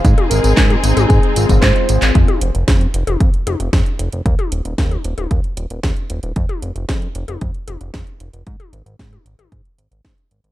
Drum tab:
HH |xxxxxxxxxxxxxxxx|xxxxxxxxxxxxxxxx|xxxxxxxxxxxxxxxx|xxxxxxxxxxxxxxxx|
TB |x-xxx-xxx-xxx-xx|----------------|----------------|----------------|
CP |----x-------x--x|----------------|----------------|----------------|
SD |----o-------o---|----o-------o---|----o-------o---|----o-------o---|
T1 |-o---o-o--------|-o-----o--o-----|-o---o-o--------|-o-----o--o-----|
BD |o---o---o--oo---|o---o---o---o---|o---o---o---o---|o---o---o---o---|

HH |xxxxxxxxxxxxxxxx|
TB |----------------|
CP |----------------|
SD |----o-------o---|
T1 |-o---o-o--------|
BD |o---o---o---o---|